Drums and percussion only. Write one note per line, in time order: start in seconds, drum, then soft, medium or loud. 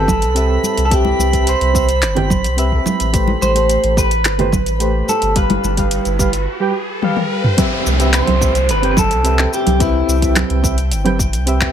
0.08 kick loud
0.08 low conga medium
0.08 shaker medium
0.22 closed hi-hat soft
0.22 shaker soft
0.36 closed hi-hat soft
0.36 shaker soft
0.63 high conga medium
0.63 shaker medium
0.78 closed hi-hat soft
0.78 shaker soft
0.91 kick loud
0.91 closed hi-hat medium
0.91 shaker soft
1.05 high conga medium
1.19 high conga medium
1.19 shaker medium
1.33 kick medium
1.33 closed hi-hat soft
1.33 shaker soft
1.47 closed hi-hat medium
1.47 shaker soft
1.61 closed hi-hat soft
1.75 kick loud
1.75 shaker medium
1.89 closed hi-hat soft
1.89 shaker soft
2.02 clap medium
2.02 closed hi-hat medium
2.02 shaker soft
2.16 closed hi-hat soft
2.16 low conga medium
2.30 kick medium
2.30 low conga medium
2.30 shaker medium
2.44 closed hi-hat soft
2.44 shaker soft
2.58 closed hi-hat medium
2.58 shaker soft
2.72 kick medium
2.86 high conga medium
2.86 low conga medium
2.86 shaker medium
3.00 closed hi-hat soft
3.00 shaker soft
3.14 kick loud
3.14 closed hi-hat medium
3.14 shaker soft
3.27 high conga medium
3.42 high conga medium
3.42 shaker medium
3.56 closed hi-hat soft
3.56 shaker soft
3.69 closed hi-hat medium
3.69 shaker soft
3.84 closed hi-hat soft
3.97 kick loud
3.97 shaker medium
4.11 closed hi-hat soft
4.11 shaker soft
4.25 clap medium
4.25 closed hi-hat medium
4.25 shaker soft
4.39 closed hi-hat soft
4.39 low conga medium
4.52 kick medium
4.52 low conga medium
4.52 shaker medium
4.66 closed hi-hat soft
4.66 shaker soft
4.80 closed hi-hat medium
4.80 shaker soft
5.08 high conga medium
5.08 shaker medium
5.22 closed hi-hat soft
5.22 shaker soft
5.36 kick loud
5.36 closed hi-hat medium
5.36 shaker soft
5.50 closed hi-hat soft
5.50 high conga loud
5.64 high conga medium
5.64 shaker medium
5.77 kick medium
5.77 closed hi-hat soft
5.77 shaker soft
5.91 closed hi-hat medium
5.91 shaker soft
6.05 closed hi-hat soft
6.05 shaker soft
6.19 kick medium
6.19 shaker medium
6.33 closed hi-hat soft
6.33 shaker soft
7.02 high tom medium
7.16 high tom medium
7.44 mid tom medium
7.58 kick loud
7.58 closed hi-hat medium
7.58 low conga medium
7.58 shaker soft
7.87 shaker medium
8.00 closed hi-hat soft
8.00 shaker soft
8.13 clap medium
8.13 closed hi-hat medium
8.13 shaker soft
8.27 closed hi-hat soft
8.27 low conga medium
8.41 kick loud
8.41 shaker medium
8.55 closed hi-hat soft
8.55 shaker soft
8.69 closed hi-hat medium
8.69 shaker soft
8.83 closed hi-hat soft
8.97 kick loud
8.97 low conga medium
8.97 shaker medium
9.11 closed hi-hat soft
9.11 shaker soft
9.25 closed hi-hat medium
9.25 shaker soft
9.39 clap medium
9.53 shaker medium
9.67 closed hi-hat soft
9.67 low conga medium
9.67 shaker soft
9.80 kick loud
9.80 closed hi-hat medium
9.80 shaker soft
10.09 shaker medium
10.22 kick medium
10.22 closed hi-hat soft
10.22 shaker soft
10.36 clap medium
10.36 closed hi-hat medium
10.36 low conga medium
10.36 shaker soft
10.50 closed hi-hat soft
10.64 kick loud
10.64 shaker medium
10.78 closed hi-hat soft
10.78 shaker soft
10.91 closed hi-hat medium
10.91 shaker soft
11.06 closed hi-hat soft
11.06 low conga medium
11.19 kick loud
11.19 shaker medium
11.33 closed hi-hat soft
11.33 shaker soft
11.47 closed hi-hat medium
11.47 shaker soft
11.61 kick medium
11.61 clap medium